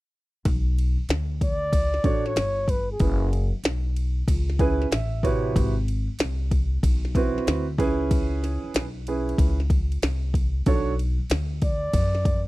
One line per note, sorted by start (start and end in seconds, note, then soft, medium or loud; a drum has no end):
0.45 0.95 B1 loud
0.45 kick loud
0.45 ride medium
0.78 ride medium
0.98 muted upright bass stroke soft
1.09 1.69 D2 medium
1.09 snare loud
1.09 hi-hat pedal soft
1.09 ride medium
1.41 2.28 D5 loud
1.41 kick medium
1.41 ride medium
1.73 2.03 C#2 medium
1.73 kick medium
1.73 ride medium
1.94 snare soft
2.04 2.35 A1 medium
2.04 2.30 D4 medium
2.04 2.30 F#4 medium
2.04 2.30 A4 medium
2.04 2.30 C#5 medium
2.04 kick medium
2.04 ride medium
2.26 2.72 C#5 loud
2.26 snare soft
2.36 2.97 G1 medium
2.36 snare loud
2.36 hi-hat pedal soft
2.36 ride medium
2.68 2.90 B4 medium
2.68 kick medium
2.68 ride medium
2.91 3.50 G#4 medium
3.00 3.50 F#1 medium
3.00 3.25 C#4 medium
3.00 3.25 E4 medium
3.00 3.26 G#4 medium
3.00 3.26 B4 medium
3.00 kick loud
3.00 ride medium
3.33 ride medium
3.53 muted upright bass stroke soft
3.64 4.24 B1 medium
3.64 snare loud
3.64 hi-hat pedal soft
3.64 ride medium
3.96 ride medium
4.28 4.88 C#2 medium
4.28 kick medium
4.28 ride medium
4.50 snare soft
4.59 4.85 C#4 medium
4.59 4.85 E4 medium
4.59 4.85 G#4 medium
4.59 4.85 B4 loud
4.59 4.89 G#5 medium
4.59 kick medium
4.59 ride soft
4.82 snare soft
4.91 5.52 A1 medium
4.91 5.22 E5 medium
4.91 snare loud
4.91 hi-hat pedal soft
4.91 ride medium
5.23 5.72 C3 medium
5.23 5.72 E4 medium
5.23 5.72 F#4 medium
5.23 5.72 B4 medium
5.23 5.54 C#5 medium
5.23 kick medium
5.23 ride medium
5.56 6.06 G#1 loud
5.56 kick loud
5.56 ride medium
5.88 ride medium
6.09 muted upright bass stroke soft
6.19 6.80 C2 medium
6.19 snare loud
6.19 hi-hat pedal soft
6.19 ride medium
6.51 kick medium
6.51 ride medium
6.83 7.33 B1 medium
6.83 kick medium
6.83 ride medium
7.05 snare soft
7.15 7.64 C4 medium
7.15 7.64 E4 medium
7.15 7.64 F#4 medium
7.15 7.64 B4 medium
7.15 kick loud
7.15 ride medium
7.36 muted upright bass stroke soft
7.36 snare soft
7.47 7.77 D2 medium
7.47 snare loud
7.47 hi-hat pedal soft
7.47 ride medium
7.78 8.59 C#2 medium
7.78 8.83 C#4 medium
7.78 8.83 E4 medium
7.78 8.83 G#4 medium
7.78 8.83 B4 medium
7.78 kick medium
7.78 ride medium
8.11 kick loud
8.11 ride medium
8.44 snare soft
8.44 ride medium
8.64 muted upright bass stroke soft
8.74 9.35 B1 medium
8.74 snare loud
8.74 hi-hat pedal medium
8.74 ride medium
9.07 9.56 C#4 medium
9.07 9.56 E4 medium
9.07 9.56 G#4 medium
9.07 9.56 B4 medium
9.07 ride medium
9.29 ride soft
9.38 9.99 C#2 medium
9.38 kick loud
9.38 ride medium
9.60 snare soft
9.70 kick loud
9.70 ride medium
9.92 ride soft
10.02 10.63 C2 medium
10.02 snare loud
10.02 hi-hat pedal soft
10.02 ride medium
10.34 kick medium
10.34 ride medium
10.66 11.16 B1 medium
10.66 10.91 D4 medium
10.66 10.92 F#4 medium
10.66 10.92 A4 medium
10.66 10.92 C#5 medium
10.66 kick loud
10.66 ride medium
10.99 ride medium
11.19 muted upright bass stroke soft
11.30 11.91 D2 medium
11.30 snare loud
11.30 hi-hat pedal soft
11.30 ride medium
11.62 12.44 D5 medium
11.62 kick medium
11.62 ride medium
11.93 12.44 F#2 medium
11.93 kick medium
11.93 ride medium
12.15 snare soft
12.25 kick medium
12.25 ride medium